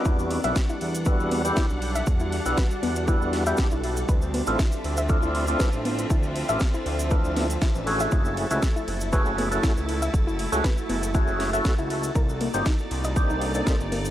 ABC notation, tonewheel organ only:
X:1
M:4/4
L:1/16
Q:"Swing 16ths" 1/4=119
K:F#phr
V:1 name="Tonewheel organ"
[G,B,DEF]3 [G,B,DEF] z4 [G,B,DEF]3 [G,B,DEG]2 z3 | z3 [G,B,DEF] z4 [G,B,DEF]3 [G,B,DEG]2 z3 | z3 [A,=CDE=F] z4 [A,CDEF]3 [A,CDEF]2 z3 | z3 [A,=CDE=F] z4 [A,CDEF]3 z3 [A,^CE^F^G]2- |
[A,CEF^G]3 [A,CEFG] z4 [A,CEFG]3 [A,CEFA]2 z3 | z3 [A,CEF^G] z4 [A,CEFG]3 [A,CEFA]2 z3 | z3 [_B,=CD_EG] z4 [B,CDEG]3 [B,CDEA]2 z3 |]